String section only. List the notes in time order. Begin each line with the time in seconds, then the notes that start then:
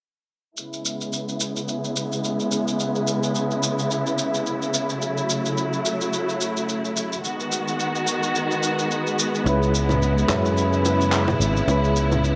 0.57 C#3 G#3 B3 E4
5.02 F#3 A3
7.24 D#3 G#3 B3 F#4
9.46 C#3 E4